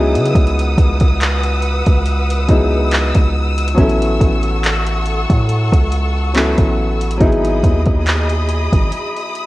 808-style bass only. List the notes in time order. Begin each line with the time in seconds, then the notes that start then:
Already playing: C#2
0.16 C#3
0.35 C#2
0.78 C#2
1.87 C#2
2.49 C#2
3.15 C#2
3.78 A1
4.21 A1
5.30 A2
5.72 C#2
6.58 A1
7.21 G#1
7.64 D#2
8.73 G#1